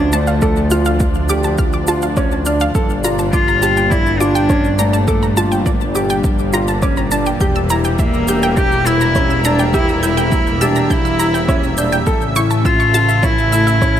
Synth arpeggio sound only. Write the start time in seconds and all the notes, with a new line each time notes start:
0.13 A5
0.27 F5
0.42 D5
0.71 F6
0.86 F5
1.30 D6
1.44 A5
1.59 F6
1.74 D6
1.88 A5
2.03 F5
2.17 D5
2.46 F6
2.61 F5
3.04 A#5
3.19 A5
3.34 D6
3.48 A#5
3.63 A5
3.77 G5
3.92 D5
4.21 D6
4.35 G5
4.79 A#5
4.93 A5
5.08 D6
5.23 A#5
5.37 A5
5.52 G5
5.66 D5
5.95 D6
6.10 G5
6.54 A#5
6.68 A5
6.83 D6
6.97 A#5
7.12 A5
7.26 G5
7.41 G6
7.56 E6
7.70 A#5
7.85 G5
7.99 E5
8.28 G6
8.43 G5
8.87 E6
9.01 A#5
9.16 G6
9.30 E6
9.45 A#5
9.59 G5
9.74 E5
10.03 G6
10.17 G5
10.61 E6
10.76 A#5
10.90 G6
11.05 E6
11.19 A#5
11.34 G5
11.49 E5
11.78 G6
11.92 G5
12.36 C#6
12.51 A5
12.65 E6
12.80 C#6
12.94 A5
13.09 E5
13.23 C#5
13.52 E6
13.67 E5